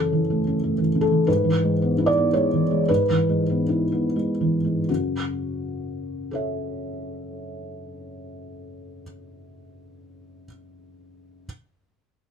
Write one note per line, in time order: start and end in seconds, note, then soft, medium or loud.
0.00 1.25 F#2 soft
0.00 0.21 C#3 soft
0.00 0.78 A4 medium
0.13 0.39 E3 soft
0.30 0.56 A3 soft
0.47 0.72 C#4 soft
0.63 0.89 A3 soft
0.78 1.04 E3 soft
0.95 1.21 C#3 soft
1.01 1.27 A4 medium
1.11 1.28 E3 soft
1.27 2.85 G#2 soft
1.27 2.06 B4 medium
1.44 1.73 E3 soft
1.63 1.91 G#3 soft
1.82 2.09 B3 soft
1.98 2.26 E4 soft
2.06 2.33 D5 medium
2.17 2.45 B3 soft
2.33 2.63 G#3 soft
2.33 2.89 C#5 medium
2.54 2.82 E3 soft
2.71 3.00 G#3 soft
2.89 4.85 G#2 soft
2.89 4.15 B4 medium
3.10 3.41 E3 soft
3.29 3.62 G#3 soft
3.50 3.84 B3 soft
3.69 4.05 E4 soft
3.92 4.29 B3 soft
4.16 4.54 G#3 soft
4.41 4.79 E3 soft
4.64 4.88 G#3 soft
4.89 9.02 F#2 soft
4.89 9.02 C#3 soft
4.89 9.01 F#4 soft
6.31 10.43 A4 soft
6.31 10.45 C#5 soft
6.31 10.47 E5 soft